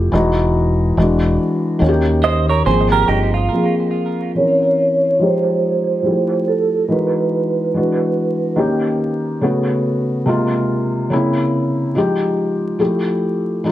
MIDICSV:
0, 0, Header, 1, 5, 480
1, 0, Start_track
1, 0, Tempo, 845070
1, 70, Time_signature, 4, 2, 24, 8
1, 7792, End_track
2, 0, Start_track
2, 0, Title_t, "Vibraphone"
2, 0, Program_c, 0, 11
2, 2479, Note_on_c, 0, 73, 99
2, 2960, Note_on_c, 0, 72, 82
2, 2969, Note_off_c, 0, 73, 0
2, 3681, Note_on_c, 0, 69, 81
2, 3696, Note_off_c, 0, 72, 0
2, 3870, Note_off_c, 0, 69, 0
2, 3890, Note_on_c, 0, 70, 55
2, 3915, Note_off_c, 0, 70, 0
2, 3920, Note_on_c, 0, 71, 73
2, 4852, Note_off_c, 0, 71, 0
2, 7792, End_track
3, 0, Start_track
3, 0, Title_t, "Clean electric guitar"
3, 0, Program_c, 1, 27
3, 1271, Note_on_c, 1, 75, 69
3, 1275, Note_on_c, 1, 72, 59
3, 1411, Note_off_c, 1, 75, 0
3, 1413, Note_off_c, 1, 72, 0
3, 1417, Note_on_c, 1, 73, 70
3, 1422, Note_on_c, 1, 70, 61
3, 1505, Note_off_c, 1, 73, 0
3, 1508, Note_off_c, 1, 70, 0
3, 1512, Note_on_c, 1, 72, 82
3, 1514, Note_on_c, 1, 68, 75
3, 1651, Note_off_c, 1, 72, 0
3, 1652, Note_off_c, 1, 68, 0
3, 1658, Note_on_c, 1, 70, 75
3, 1662, Note_on_c, 1, 67, 62
3, 1743, Note_off_c, 1, 67, 0
3, 1746, Note_off_c, 1, 70, 0
3, 1750, Note_on_c, 1, 67, 78
3, 1753, Note_on_c, 1, 63, 69
3, 1890, Note_off_c, 1, 67, 0
3, 1892, Note_off_c, 1, 63, 0
3, 1897, Note_on_c, 1, 65, 70
3, 2125, Note_off_c, 1, 65, 0
3, 7792, End_track
4, 0, Start_track
4, 0, Title_t, "Felt piano"
4, 0, Program_c, 2, 0
4, 0, Control_c, 2, 64, 127
4, 0, Note_on_c, 2, 53, 72
4, 0, Note_on_c, 2, 57, 67
4, 0, Note_on_c, 2, 64, 64
4, 0, Note_on_c, 2, 67, 65
4, 66, Note_off_c, 2, 53, 0
4, 66, Note_on_c, 2, 52, 87
4, 69, Note_off_c, 2, 57, 0
4, 72, Note_off_c, 2, 64, 0
4, 74, Note_on_c, 2, 56, 65
4, 76, Note_off_c, 2, 67, 0
4, 77, Control_c, 2, 64, 0
4, 78, Note_on_c, 2, 63, 74
4, 85, Note_on_c, 2, 66, 80
4, 170, Control_c, 2, 64, 127
4, 544, Note_off_c, 2, 52, 0
4, 550, Note_off_c, 2, 56, 0
4, 552, Note_on_c, 2, 52, 77
4, 554, Note_off_c, 2, 63, 0
4, 557, Note_off_c, 2, 66, 0
4, 557, Control_c, 2, 64, 0
4, 558, Note_on_c, 2, 56, 75
4, 564, Note_on_c, 2, 62, 68
4, 568, Note_on_c, 2, 66, 71
4, 664, Control_c, 2, 64, 127
4, 1017, Note_on_c, 2, 51, 82
4, 1022, Note_on_c, 2, 58, 65
4, 1025, Note_off_c, 2, 66, 0
4, 1029, Note_on_c, 2, 61, 67
4, 1031, Note_off_c, 2, 52, 0
4, 1034, Note_off_c, 2, 56, 0
4, 1034, Note_on_c, 2, 66, 65
4, 1036, Control_c, 2, 64, 0
4, 1037, Note_off_c, 2, 62, 0
4, 1071, Note_on_c, 2, 67, 78
4, 1077, Note_off_c, 2, 66, 0
4, 1132, Control_c, 2, 64, 127
4, 1502, Note_off_c, 2, 58, 0
4, 1504, Note_off_c, 2, 51, 0
4, 1504, Note_on_c, 2, 53, 67
4, 1509, Note_off_c, 2, 61, 0
4, 1511, Note_on_c, 2, 58, 56
4, 1518, Control_c, 2, 64, 0
4, 1518, Note_on_c, 2, 60, 57
4, 1523, Note_on_c, 2, 68, 74
4, 1530, Note_off_c, 2, 67, 0
4, 1621, Control_c, 2, 64, 127
4, 1986, Note_off_c, 2, 53, 0
4, 1990, Note_off_c, 2, 58, 0
4, 1994, Note_off_c, 2, 60, 0
4, 1994, Note_on_c, 2, 53, 68
4, 1997, Note_off_c, 2, 68, 0
4, 1998, Control_c, 2, 64, 0
4, 2000, Note_on_c, 2, 58, 60
4, 2005, Note_on_c, 2, 60, 61
4, 2012, Note_on_c, 2, 68, 77
4, 2085, Control_c, 2, 64, 127
4, 2466, Note_off_c, 2, 60, 0
4, 2470, Note_on_c, 2, 52, 52
4, 2472, Note_off_c, 2, 53, 0
4, 2475, Note_off_c, 2, 58, 0
4, 2475, Note_on_c, 2, 60, 51
4, 2477, Control_c, 2, 64, 0
4, 2480, Note_on_c, 2, 61, 51
4, 2481, Note_off_c, 2, 68, 0
4, 2486, Note_on_c, 2, 70, 62
4, 2587, Control_c, 2, 64, 127
4, 2950, Note_off_c, 2, 52, 0
4, 2951, Note_on_c, 2, 53, 68
4, 2952, Note_off_c, 2, 60, 0
4, 2955, Note_off_c, 2, 61, 0
4, 2958, Note_off_c, 2, 70, 0
4, 2958, Control_c, 2, 64, 0
4, 2958, Note_on_c, 2, 56, 52
4, 2961, Note_on_c, 2, 63, 54
4, 2968, Note_on_c, 2, 67, 67
4, 3065, Control_c, 2, 64, 127
4, 3414, Note_off_c, 2, 53, 0
4, 3422, Note_on_c, 2, 53, 58
4, 3428, Note_on_c, 2, 55, 39
4, 3432, Note_off_c, 2, 67, 0
4, 3433, Note_on_c, 2, 64, 49
4, 3434, Note_off_c, 2, 56, 0
4, 3436, Note_off_c, 2, 63, 0
4, 3436, Control_c, 2, 64, 0
4, 3441, Note_on_c, 2, 67, 52
4, 3467, Note_on_c, 2, 57, 43
4, 3475, Note_off_c, 2, 55, 0
4, 3551, Control_c, 2, 64, 127
4, 3906, Note_off_c, 2, 53, 0
4, 3910, Note_on_c, 2, 52, 66
4, 3912, Note_off_c, 2, 64, 0
4, 3915, Note_off_c, 2, 67, 0
4, 3915, Note_on_c, 2, 56, 59
4, 3917, Control_c, 2, 64, 0
4, 3921, Note_on_c, 2, 63, 59
4, 3927, Note_on_c, 2, 66, 62
4, 3928, Note_off_c, 2, 57, 0
4, 4004, Control_c, 2, 64, 127
4, 4387, Note_off_c, 2, 52, 0
4, 4393, Note_off_c, 2, 56, 0
4, 4395, Note_off_c, 2, 63, 0
4, 4396, Note_on_c, 2, 52, 58
4, 4397, Control_c, 2, 64, 0
4, 4398, Note_off_c, 2, 66, 0
4, 4402, Note_on_c, 2, 56, 52
4, 4408, Note_on_c, 2, 62, 54
4, 4413, Note_on_c, 2, 66, 67
4, 4487, Control_c, 2, 64, 127
4, 4862, Note_on_c, 2, 51, 76
4, 4869, Note_on_c, 2, 58, 73
4, 4873, Note_off_c, 2, 52, 0
4, 4876, Note_off_c, 2, 56, 0
4, 4876, Note_on_c, 2, 61, 63
4, 4877, Control_c, 2, 64, 0
4, 4879, Note_off_c, 2, 62, 0
4, 4879, Note_on_c, 2, 67, 76
4, 4882, Note_off_c, 2, 66, 0
4, 4982, Control_c, 2, 64, 127
4, 5346, Note_off_c, 2, 51, 0
4, 5346, Note_on_c, 2, 49, 67
4, 5349, Note_off_c, 2, 58, 0
4, 5351, Note_on_c, 2, 57, 70
4, 5353, Note_off_c, 2, 61, 0
4, 5355, Note_off_c, 2, 67, 0
4, 5357, Note_on_c, 2, 59, 73
4, 5358, Control_c, 2, 64, 0
4, 5362, Note_on_c, 2, 66, 72
4, 5458, Control_c, 2, 64, 127
4, 5826, Note_on_c, 2, 48, 76
4, 5828, Note_off_c, 2, 49, 0
4, 5831, Note_off_c, 2, 57, 0
4, 5833, Note_off_c, 2, 59, 0
4, 5833, Note_on_c, 2, 56, 70
4, 5836, Note_off_c, 2, 66, 0
4, 5836, Control_c, 2, 64, 0
4, 5838, Note_on_c, 2, 58, 69
4, 5845, Note_on_c, 2, 65, 82
4, 5936, Control_c, 2, 64, 127
4, 6302, Note_off_c, 2, 58, 0
4, 6304, Note_on_c, 2, 49, 79
4, 6308, Note_off_c, 2, 48, 0
4, 6311, Note_on_c, 2, 58, 70
4, 6312, Note_off_c, 2, 56, 0
4, 6315, Note_on_c, 2, 60, 68
4, 6317, Note_off_c, 2, 65, 0
4, 6318, Control_c, 2, 64, 0
4, 6323, Note_on_c, 2, 64, 90
4, 6424, Control_c, 2, 64, 127
4, 6787, Note_off_c, 2, 49, 0
4, 6788, Note_on_c, 2, 53, 74
4, 6790, Note_off_c, 2, 58, 0
4, 6792, Note_off_c, 2, 60, 0
4, 6793, Note_on_c, 2, 56, 73
4, 6796, Note_off_c, 2, 64, 0
4, 6797, Control_c, 2, 64, 0
4, 6799, Note_on_c, 2, 63, 60
4, 6805, Note_on_c, 2, 67, 80
4, 6894, Control_c, 2, 64, 127
4, 7255, Note_off_c, 2, 53, 0
4, 7263, Note_on_c, 2, 53, 61
4, 7268, Note_on_c, 2, 57, 70
4, 7271, Note_off_c, 2, 67, 0
4, 7272, Note_off_c, 2, 56, 0
4, 7273, Note_on_c, 2, 64, 60
4, 7274, Note_off_c, 2, 63, 0
4, 7278, Control_c, 2, 64, 0
4, 7279, Note_on_c, 2, 67, 66
4, 7368, Control_c, 2, 64, 127
4, 7747, Note_off_c, 2, 53, 0
4, 7747, Note_on_c, 2, 52, 69
4, 7749, Note_off_c, 2, 57, 0
4, 7752, Note_off_c, 2, 64, 0
4, 7753, Note_on_c, 2, 56, 67
4, 7755, Note_off_c, 2, 67, 0
4, 7758, Control_c, 2, 64, 0
4, 7758, Note_on_c, 2, 63, 72
4, 7764, Note_on_c, 2, 65, 66
4, 7792, Note_off_c, 2, 52, 0
4, 7792, Note_off_c, 2, 56, 0
4, 7792, Note_off_c, 2, 63, 0
4, 7792, Note_off_c, 2, 65, 0
4, 7792, End_track
5, 0, Start_track
5, 0, Title_t, "Fingered electric bass"
5, 0, Program_c, 3, 33
5, 0, Note_on_c, 3, 29, 104
5, 57, Note_off_c, 3, 29, 0
5, 71, Note_on_c, 3, 28, 104
5, 528, Note_off_c, 3, 28, 0
5, 552, Note_on_c, 3, 28, 96
5, 777, Note_off_c, 3, 28, 0
5, 1032, Note_on_c, 3, 39, 94
5, 1488, Note_off_c, 3, 39, 0
5, 1514, Note_on_c, 3, 32, 94
5, 1738, Note_off_c, 3, 32, 0
5, 1752, Note_on_c, 3, 31, 95
5, 1977, Note_off_c, 3, 31, 0
5, 7792, End_track
0, 0, End_of_file